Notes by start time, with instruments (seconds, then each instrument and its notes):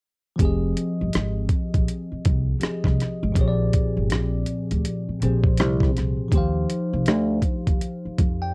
0.36 tine electric piano F3 C4, kick, closed hi-hat
0.40 upright bass F1, tine electric piano G4 G#4
0.45 tine electric piano D#5
0.77 closed hi-hat
1.01 upright bass G1
1.13 upright bass G#1, cross-stick, closed hi-hat
1.49 kick, closed hi-hat
1.74 upright bass A#1, kick, closed hi-hat
1.88 closed hi-hat
2.12 muted upright bass stroke
2.25 upright bass C2, kick, closed hi-hat
2.60 tine electric piano F3 C4 G4 G#4, muted upright bass stroke, cross-stick, closed hi-hat
2.64 tine electric piano D#5
2.84 upright bass C2, kick, cross-stick
3.00 cross-stick, closed hi-hat
3.23 upright bass G#1
3.32 tine electric piano A#2 F3 C4, kick, closed hi-hat
3.36 upright bass A#1, tine electric piano G4 G#4
3.41 tine electric piano C#5
3.48 tine electric piano D5
3.73 kick, closed hi-hat
3.97 upright bass G1
4.10 upright bass A#1, cross-stick, closed hi-hat
4.46 closed hi-hat
4.71 upright bass D2, closed hi-hat
4.85 closed hi-hat
5.09 muted upright bass stroke
5.20 upright bass A#1, tine electric piano A#2 F3 C4 G4 G#4, closed hi-hat
5.25 tine electric piano C5
5.44 kick
5.57 upright bass C2, cross-stick, closed hi-hat
5.80 kick, cross-stick
5.97 upright bass C2, cross-stick, closed hi-hat
6.29 upright bass D#2, tine electric piano F3 D#4, kick, closed hi-hat
6.33 tine electric piano G4 C5
6.38 tine electric piano F5
6.70 closed hi-hat
6.93 upright bass C2
7.06 upright bass D2, cross-stick, closed hi-hat
7.42 kick, closed hi-hat
7.67 upright bass D#2, kick, closed hi-hat
7.81 closed hi-hat
8.05 muted upright bass stroke
8.18 upright bass F2, kick, closed hi-hat
8.42 tine electric piano D5 G5